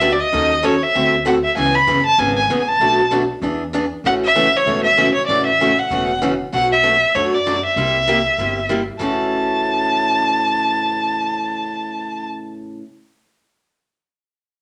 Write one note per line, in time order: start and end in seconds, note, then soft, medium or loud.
0.00 0.20 D2 medium
0.00 0.12 D3 medium
0.00 0.12 F#3 medium
0.00 0.12 B3 medium
0.00 0.12 D4 medium
0.00 0.12 G4 medium
0.00 0.14 E5 medium
0.12 0.22 D5 medium
0.20 0.67 D#5 medium
0.32 0.82 D#2 medium
0.32 0.52 D#3 medium
0.32 0.52 F#3 medium
0.32 0.52 C#4 medium
0.32 0.52 D#4 medium
0.32 0.53 A4 medium
0.63 0.73 D#3 medium
0.63 0.74 F#3 medium
0.63 0.74 C#4 medium
0.63 0.74 D#4 medium
0.63 0.74 A4 medium
0.63 0.84 C#5 medium
0.83 1.13 E5 medium
0.95 1.44 D2 medium
0.95 1.14 D3 medium
0.95 1.14 A3 medium
0.95 1.14 C4 medium
0.95 1.14 F#4 medium
0.95 1.15 A4 medium
1.25 1.36 D3 medium
1.25 1.36 A3 medium
1.25 1.36 C4 medium
1.25 1.36 F#4 medium
1.25 1.36 A4 loud
1.25 1.35 F#5 medium
1.44 1.56 E5 medium
1.56 1.81 C#2 medium
1.56 1.76 C#3 medium
1.56 1.76 E3 medium
1.56 1.76 B3 medium
1.56 1.76 C#4 medium
1.56 1.76 G#4 medium
1.56 1.76 G#5 medium
1.75 2.05 B5 medium
1.87 2.14 F#1 medium
1.87 1.98 C#3 medium
1.87 1.98 E3 medium
1.87 1.98 B3 medium
1.87 1.98 C#4 medium
1.87 1.98 G#4 medium
2.06 2.20 A5 medium
2.18 2.45 G#1 medium
2.18 2.38 C#3 medium
2.18 2.38 E3 medium
2.18 2.38 B3 medium
2.18 2.38 C#4 medium
2.18 2.38 G#4 medium
2.18 2.35 G#5 medium
2.36 2.57 G#5 medium
2.48 2.75 A1 medium
2.48 2.60 C#3 medium
2.48 2.60 E3 medium
2.48 2.60 B3 medium
2.48 2.61 C#4 medium
2.48 2.61 G#4 medium
2.60 2.70 G#5 medium
2.68 3.12 A5 medium
2.80 3.30 B1 medium
2.80 3.00 B2 medium
2.80 3.00 F#3 medium
2.80 3.00 A3 medium
2.80 3.00 D4 medium
2.80 3.01 F#4 medium
3.11 3.22 B2 medium
3.11 3.22 F#3 medium
3.11 3.22 A3 medium
3.11 3.22 D4 medium
3.11 3.22 F#4 loud
3.42 3.92 E2 medium
3.42 3.62 E3 medium
3.42 3.62 B3 medium
3.42 3.62 D4 medium
3.42 3.63 G#4 medium
3.73 3.84 E3 medium
3.73 3.84 B3 medium
3.73 3.84 D4 medium
3.73 3.85 G#4 loud
4.04 4.54 A1 medium
4.04 4.24 C#3 medium
4.04 4.24 E3 medium
4.04 4.25 A3 medium
4.04 4.25 C#4 medium
4.04 4.25 F#4 medium
4.04 4.14 F#5 loud
4.25 4.58 E5 loud
4.35 4.46 C#3 medium
4.35 4.46 E3 medium
4.35 4.46 A3 loud
4.35 4.46 C#4 medium
4.35 4.46 F#4 medium
4.57 4.83 C#5 medium
4.66 5.16 E1 medium
4.66 4.86 C#3 medium
4.66 4.86 E3 medium
4.66 4.86 A3 medium
4.66 4.87 C#4 medium
4.66 4.86 F#4 medium
4.84 5.13 E5 medium
4.97 5.08 C#3 medium
4.97 5.08 E3 medium
4.97 5.08 A3 medium
4.97 5.08 C#4 medium
4.97 5.08 F#4 loud
5.15 5.26 C#5 medium
5.27 5.78 A1 medium
5.27 5.48 C#3 medium
5.27 5.48 E3 medium
5.27 5.49 A3 medium
5.27 5.49 C#4 medium
5.27 5.49 F#4 medium
5.27 5.45 D5 medium
5.46 5.81 E5 medium
5.60 5.70 C#3 medium
5.60 5.71 E3 medium
5.60 5.71 A3 medium
5.60 5.71 C#4 medium
5.60 5.71 F#4 medium
5.79 6.22 F#5 medium
5.90 6.40 E1 medium
5.90 6.10 C#3 medium
5.90 6.10 E3 medium
5.90 6.10 A3 medium
5.90 6.10 C#4 medium
5.90 6.11 F#4 medium
6.22 6.32 C#3 medium
6.22 6.32 E3 medium
6.22 6.33 A3 medium
6.22 6.33 C#4 medium
6.22 6.33 F#4 medium
6.52 7.02 B1 medium
6.52 6.72 B2 medium
6.52 6.72 F#3 medium
6.52 6.72 A3 medium
6.52 6.73 D4 medium
6.52 6.72 F#4 medium
6.52 6.70 F#5 loud
6.73 7.16 E5 medium
6.83 6.94 B2 medium
6.83 6.94 F#3 medium
6.83 6.94 A3 medium
6.83 6.94 D4 medium
6.83 6.94 F#4 medium
7.15 7.64 F#2 medium
7.15 7.34 B2 medium
7.15 7.34 F#3 medium
7.15 7.34 A3 medium
7.15 7.35 D4 medium
7.15 7.35 F#4 medium
7.15 7.36 C#5 medium
7.34 7.65 D5 medium
7.46 7.56 B2 medium
7.46 7.57 F#3 medium
7.46 7.57 A3 medium
7.46 7.57 D4 medium
7.46 7.57 F#4 medium
7.66 8.67 E5 medium
7.76 8.26 C2 medium
7.76 7.96 C3 medium
7.76 7.96 G3 medium
7.76 7.97 A#3 medium
7.76 7.97 E4 medium
7.76 7.97 G4 medium
8.07 8.18 C3 medium
8.07 8.18 G3 medium
8.07 8.18 A#3 medium
8.07 8.19 E4 medium
8.07 8.19 G4 medium
8.38 8.88 G1 medium
8.38 8.58 C3 medium
8.38 8.58 G3 medium
8.38 8.59 A#3 medium
8.38 8.59 E4 medium
8.38 8.59 G4 medium
8.69 8.80 C3 medium
8.69 8.80 G3 medium
8.69 8.80 A#3 medium
8.69 8.80 E4 medium
8.69 8.80 G4 medium
8.99 12.78 A1 medium
8.99 12.82 A2 medium
8.99 12.82 C#3 medium
8.99 12.83 E3 medium
8.99 12.84 A3 medium
8.99 12.84 C#4 medium
8.99 12.84 F#4 medium
8.99 12.26 A5 medium